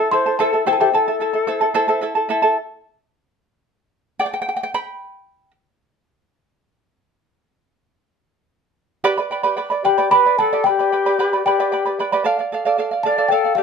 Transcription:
Already playing: A4 A5
0.00 E4 A4
0.11 E4 A4 C5 E5 A5 C6
0.26 E4 A4 A5
0.39 E4 A4 C5 E5 A5
0.53 E4 A4 A5
0.66 E4 G4 A4 C5 E5 G5 A5
0.71 A4 A5
0.79 E4 G4 A4 C5 E5 G5 A5
0.93 E4 A4 E5 A5
1.08 E4 A4 A5
1.20 E4 A4 E5 A5
1.33 E4 A4 A5
1.47 E4 A4 C5 E5 A5
1.61 E4 A4 A5
1.74 E4 A4 C5 E5 A5
1.88 E4 A4 C5 E5 A5
2.01 E4 A4 E5 A5
2.15 E4 A4 A5
2.29 E4 A4 E5 A5
2.42 E4 A4 A5
4.19 D5 G5
4.26 G5
4.33 G5
4.42 G5
4.49 G5
4.57 G5
4.63 G5
4.74 G5 B5
9.04 G4 B4 D5 G5 B5
9.18 B4 D5 B5
9.31 B4 D5 G5 B5
9.43 G4 B4 D5 G5 B5
9.57 B4 D5 G5 B5
9.70 B4 D5 B5
9.84 G4 B4 D5 G5 B5
9.98 G4 B4 D5 G5 B5
10.11 G4 B4 D5 G5 B5
10.25 B4 D5 B5
10.39 A4 B4 D5 G5 A5 B5
10.53 G4 B4 D5 G5 B5
10.64 B4 D5 G5 B5
10.68 G4
10.79 B4 D5 B5
10.92 B4 D5 G5 B5
11.06 G4 B4 D5 G5 B5
11.19 G4 B4 D5 G5 B5
11.33 B4 D5 B5
11.46 G4 B4 D5 G5 B5
11.60 G4 B4 D5 G5 B5
11.72 B4 D5 G5 B5
11.86 B4 D5 B5
11.99 B4 D5 G5 B5
12.12 G4 B4 D5 G5 B5
12.24 A4 D5 F5
12.39 D5 F5
12.52 A4 D5 F5
12.65 A4 D5 F5
12.78 A4 D5 F5
12.91 D5 F5
13.03 A4 D5 F5 A5
13.18 A4 D5 F5
13.28 A4 D5 G5
13.32 F5
13.44 D5 F5
13.55 G4 A4 D5 F5

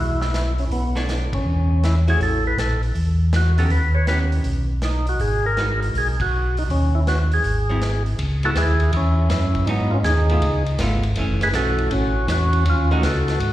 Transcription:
Already playing: B1 E3 G#3 D#4 E4 F#4
0.21 E4, snare
0.34 snare, closed hi-hat
0.58 C#4, open hi-hat
0.70 B1 B3, open hi-hat
0.95 B3 D4 A4 C#5, snare
1.09 snare, closed hi-hat
1.32 B1 C#4, kick, ride
1.45 E2
1.84 E4, snare, closed hi-hat
2.07 A3 E4 F#4 G#4 C#5, open hi-hat
2.19 A1 A4, open hi-hat
2.47 B4
2.57 A#1 A4, snare, closed hi-hat
2.83 open hi-hat
2.95 E2, open hi-hat
3.33 F#4, snare, closed hi-hat
3.58 D#3 B3 C#4 G4 A4, open hi-hat
3.69 D#2 B4, open hi-hat
3.95 C#5
4.07 D#3 B3 C#4 G4 B4, snare, closed hi-hat
4.32 open hi-hat
4.44 B1, open hi-hat
4.82 D#4, snare, closed hi-hat
5.07 F#4, open hi-hat
5.19 G#1 G#4, open hi-hat
5.46 A#4
5.57 G#3 D#4 F#4 B4, snare, closed hi-hat
5.83 open hi-hat
5.94 B1 G#4, open hi-hat
6.20 F#4, kick, ride
6.57 D#4, open hi-hat
6.69 D#2 C#4, open hi-hat
6.95 E4
7.07 F#4, snare, closed hi-hat
7.32 G#4, open hi-hat
7.44 G#1, open hi-hat
7.69 F#3 C4 E4
7.82 snare, closed hi-hat
8.06 open hi-hat
8.19 C#2, ride
8.43 G#3 B3 E4 F#4 A4, ride
8.55 D#2 E4 G#4, snare, hi-hat pedal, ride
8.80 ride
8.93 E2 C#4 E4, ride
9.29 F#2 E4, snare, hi-hat pedal, ride
9.34 C#4
9.55 kick, ride
9.66 G#2 F#3 B3 D#4, ride
9.91 C#4 F4
10.04 D#2 D#4 G#4, snare, hi-hat pedal, ride
10.30 A3 B3 F4, ride
10.41 C#2, ride
10.66 ride
10.79 G#1 A3 B3 F4, snare, hi-hat pedal, ride
11.03 ride
11.16 F#1 E3 A3 C#4, ride
11.41 G#4 B4, snare, ride
11.53 B1 E3 A3 C#4 F#4 A4, snare, hi-hat pedal, ride
11.78 ride
11.90 A1 C#4 F#4, ride
12.28 E2 C#4, snare, hi-hat pedal, ride
12.32 F#4
12.53 ride
12.65 D#2 C#4, ride
12.70 F4
12.91 D#3 A3 C#4 D#4 F#4
13.02 C#2 F#4, snare, hi-hat pedal, ride
13.06 A4
13.28 snare, ride
13.40 G#2, ride

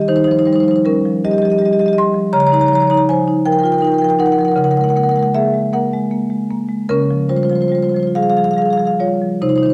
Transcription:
0.01 D#5
0.08 D#3 D#4 C5
0.16 D#4 C5
0.24 F3 D#4 C5
0.31 D#4 C5
0.39 D#4 C5
0.46 G3 D#4 C5
0.53 D#4 C5
0.60 D#4 C5
0.65 F3 C5
0.71 D#4
0.76 C5
0.85 G3 C#4 A#4
1.06 F3
1.25 G3 G4 D#5
1.31 G4 D#5
1.38 G4 D#5
1.43 F3 D#5
1.50 G4 D#5
1.58 G3 G4 D#5
1.65 G4 D#5
1.73 G4 D#5
1.79 F3 G4 D#5
1.86 G4 D#5
1.93 D#5
1.98 G3 D#5 C6
2.14 F3
2.33 C#3 C#5 A#5
2.40 C#5 A#5
2.47 C#5 A#5
2.52 D#4 C#5 A#5
2.60 C#5 A#5
2.66 C#5 A#5
2.72 F3 C#5 A#5
2.80 C#5 A#5
2.87 D#4 C#5 A#5
2.94 C#5 A#5
3.09 F3 C5 G#5
3.28 D#4
3.46 F3 A#4 G5
3.52 A#4 G5
3.59 A#4 G5
3.63 F4 A#4 G5
3.72 A#4 G5
3.78 D#4 A#4 G5
3.85 A#4 G5
3.92 A#4 G5
3.98 F3 A#4 G5
4.04 G5
4.09 A#4 G5
4.19 D#4 A#4 F#5
4.26 A#4 F#5
4.32 A#4 F#5
4.38 F3 A#4 F#5
4.45 A#4 F#5
4.52 F#5
4.56 C#3 A#4 F#5
4.64 A#4 F#5
4.71 A#4 F#5
4.76 G#3 F#5
4.81 A#4 F#5
4.89 A#4 F#5
4.96 A#3 A#4 F#5
5.03 A#4 F#5
5.09 A#4 F#5
5.16 G#3 A#4 F#5
5.23 F#5
5.35 A#3 G#4 E5
5.54 G#3
5.73 A#3 A#4 F#5
5.93 G#3
6.11 A#3
6.30 G#3
6.51 A#3
6.69 G#3
6.89 C#3 C#4 A#4
7.11 F3
7.29 G3 F4 C5
7.37 F4 C5
7.43 F4 C5
7.50 F3 F4 C5
7.55 C5
7.61 F4 C5
7.68 G3 F4 C5
7.75 F4 C5
7.83 F4 C5
7.89 F4 C5
7.94 F3 C5
8.00 F4 C5
8.07 F4
8.15 G3 G#4 F5
8.23 G#4 F5
8.30 G#4 F5
8.37 F3 G#4 F5
8.44 G#4 F5
8.51 G#4 F5
8.57 G3 F5
8.62 G#4 F5
8.70 G#4 F5
8.78 F3 G#4 F5
8.85 G#4 F5
9.00 G3 F4 C#5
9.22 F3
9.42 C3 D#4 C5
9.49 D#4 C5
9.56 D#4 C5
9.63 D#3 D#4 C5
9.70 C5

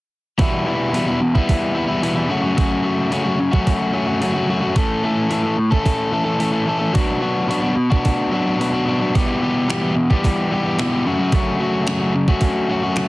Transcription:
0.38 E2 B2 E3 G3 B3 E4, kick, open hi-hat
0.66 E3 G3 B3 E4
0.93 E2 B2 E3 G3 B3 E4, open hi-hat
1.07 E3 G3 B3 E4
1.21 muted overdriven electric guitar stroke
1.35 E3 G3 B3 E4, kick
1.49 kick, open hi-hat
1.75 E3 G3 B3 E4
1.88 E3 G3 B3 E4
2.02 E2 B2 E3 G3 B3 E4, open hi-hat
2.16 E3 G3 B3 E4
2.29 F#2 C#3 F#3 A3 C#4 F#4
2.42 F#3 A3 C#4 F#4
2.55 F#2 C#3 F#3 A3 C#4 F#4, kick, open hi-hat
2.83 F#3 A3 C#4 F#4
3.10 F#2 C#3 F#3 A3 C#4 F#4, open hi-hat
3.24 F#3 A3 C#4 F#4
3.39 muted overdriven electric guitar stroke
3.51 F#3 A3 C#4 F#4, kick
3.67 kick, open hi-hat
3.93 F#3 A3 C#4 F#4
4.07 F#3 A3 C#4 F#4
4.20 F#2 C#3 F#3 A3 C#4 F#4, open hi-hat
4.34 F#3 A3 C#4 F#4
4.47 F#3 A3 C#4 F#4
4.61 F#3 A3 C#4 F#4
4.75 A2 E3 A3 C#4 A4, kick, open hi-hat
5.02 E3 A3 C#4 A4
5.30 A2 E3 A3 C#4 A4, open hi-hat
5.43 A3 C#4 A4
5.58 muted overdriven electric guitar stroke
5.71 A3 C#4 A4, kick
5.86 kick, open hi-hat
6.12 E3 A3 C#4 A4
6.25 A3 C#4 A4
6.39 A2 E3 A3 C#4 A4, open hi-hat
6.52 A3 C#4 A4
6.66 E3 A3 C#4 A4
6.79 A3 C#4 A4
6.93 B2 F#3 B3 D4 F#4, kick, open hi-hat
7.20 F#3 B3 D4 F#4
7.48 B2 F#3 B3 D4 F#4, open hi-hat
7.61 B3 D4 F#4
7.76 muted overdriven electric guitar stroke
7.90 B3 D4 F#4, kick
8.05 kick, open hi-hat
8.31 F#3 B3 D4 F#4
8.46 B3 D4 F#4
8.58 B2 F#3 B3 D4 F#4, open hi-hat
8.73 B3 D4 F#4
8.86 F#3 B3 D4 F#4
9.00 B3 D4 F#4
9.14 E2 B2 E3 G3 B3 G4, kick, open hi-hat
9.41 E3 G3 B3 G4
9.68 E2 B2 E3 G3 B3 G4, finger snap, open hi-hat
9.81 E3 G3 B3 G4
9.96 muted overdriven electric guitar stroke
10.10 E3 G3 B3 G4, kick
10.24 kick, open hi-hat
10.51 E3 G3 B3 G4
10.64 E3 G3 B3 G4
10.79 E2 B2 E3 G3 B3 G4, finger snap, open hi-hat
10.92 E3 G3 B3 G4
11.06 F#2 C#3 F#3 A3 C#4 F#4
11.19 F#3 A3 C#4 F#4
11.32 F#2 C#3 F#3 A3 C#4 F#4, kick, open hi-hat
11.60 F#3 A3 C#4 F#4
11.87 F#2 C#3 F#3 A3 C#4 F#4, finger snap, open hi-hat
12.00 F#3 A3 C#4 F#4
12.15 muted overdriven electric guitar stroke
12.28 F#3 A3 C#4 F#4, kick
12.41 kick, open hi-hat
12.69 F#3 A3 C#4 F#4
12.83 F#3 A3 C#4 F#4
12.96 F#2 C#3 F#3 A3 C#4 F#4, finger snap, open hi-hat

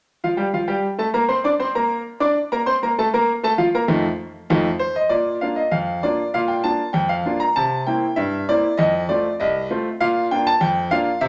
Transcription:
0.24 F3 F4 F5
0.37 G3 G4 G5
0.53 F3 F4 F5
0.68 G3 G4 G5
0.99 A3 A4 A5
1.14 A#3 A#4 A#5
1.29 C4 C5 C6
1.44 D4 D5 D6
1.60 C4 C5 C6
1.75 A#3 A#4 A#5
2.20 D4 D5 D6
2.52 A#3 A#4 A#5
2.66 C4 C5 C6
2.83 A#3 A#4 A#5
2.99 A3 A4 A5
3.14 A#3 A#4 A#5
3.43 A3 A4 A5
3.58 F3 F4 F5
3.75 A#3 A#4 A#5
3.88 F2 A3 D#4 F4
4.50 F2 A3 D#4 F4
4.79 C5
4.96 D#5
5.09 A#2 D5
5.41 A#3 D4 F4 F5
5.56 D#5
5.71 F2 F5
6.03 A#3 D4 F4 D5
6.34 A#2 F5
6.48 G5
6.64 A#3 D4 F4 A5
6.93 F2 G5
7.09 F5
7.25 A#3 D4 F4
7.40 A#5
7.56 C3 A5
7.87 A#3 C4 E4 G5
8.16 G2 E5
8.49 A#3 C4 E4 D5
8.78 F2 D#5
9.09 A3 C4 F4 D5
9.40 C2 D#5
9.71 A3 C4 F4
10.01 A#2 F5
10.31 A#3 D4 F4 G5
10.47 A5
10.61 F2 G5
10.91 A#3 D4 F4 F5
11.21 C3 E5

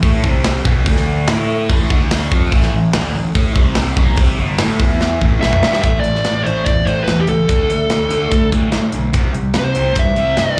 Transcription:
0.03 A2 A3 E4 A4, kick, open hi-hat
0.24 C2 C3 G3 C4, kick
0.44 snare, open hi-hat
0.65 B1 B2 F#3 B3, kick
0.86 D2 D3 A3 D4, kick, open hi-hat
0.96 snare
1.27 A2 A3 E4 A4, snare, open hi-hat
1.70 A1 A2 E3 A3, kick, open hi-hat
1.90 D2 D3 A3 D4, kick
2.11 snare, open hi-hat
2.32 F2 F3 C4 F4, kick
2.52 A1 A2 E3 A3, kick, open hi-hat
2.62 snare
2.74 A1 A2 E3
2.93 D2 D3 A3 D4, snare, open hi-hat
3.14 A1 A2 E3
3.35 A2 A3 E4 A4, kick, open hi-hat
3.55 C2 C3 G3 C4, kick
3.75 snare, open hi-hat
3.96 B1 B2 F#3 B3, kick
4.16 C2 C3 G3 C4, kick, open hi-hat
4.38 G1 G2 D3 G3
4.58 A2 A3 E4 A4, snare, open hi-hat
4.80 E2 E3 B3 E4, kick
5.01 snare
5.21 A1 A2 E3 A3, kick
5.41 B1 B2 F#3 B3 E5, snare
5.53 mid tom
5.62 G2 G3 D4 G4, snare
5.73 snare
5.82 A1 A2 E3 A3 E5, kick, closed hi-hat
6.00 A2 E3 D5, closed hi-hat
6.05 A1
6.15 snare
6.24 A2 E3, snare, closed hi-hat
6.43 A1 A2 E3 A3 C5, closed hi-hat
6.65 E2 A2 E3 D5, kick, closed hi-hat
6.86 A1 A2 E3 A3 C5, closed hi-hat
7.04 E2 A2 B4, snare, closed hi-hat
7.08 E3
7.20 G4
7.27 C#2 A2 E3 A4, closed hi-hat
7.48 D2 D3 A3 D4, kick, closed hi-hat
7.69 D2 D3 A3, closed hi-hat
7.89 D2 D3 A3, snare, closed hi-hat
8.09 D2 D3 A3 D4, closed hi-hat
8.31 D2 D3 A3, kick, closed hi-hat
8.51 A2 D3 A3 D4, kick, closed hi-hat
8.72 A2 D3 A3, snare, closed hi-hat
8.92 B1 D3 A3, closed hi-hat
9.13 C2 C3 G3 C4, kick, closed hi-hat
9.33 C2 C3 G3, closed hi-hat
9.54 C3 G3, snare, closed hi-hat
9.59 C5
9.75 C2 C3 G3 C4, closed hi-hat
9.94 G2 C3 G3, kick, closed hi-hat
9.99 E5
10.16 C2 C3 G3 C4, closed hi-hat
10.37 G2 C3 G3 D5, snare, closed hi-hat

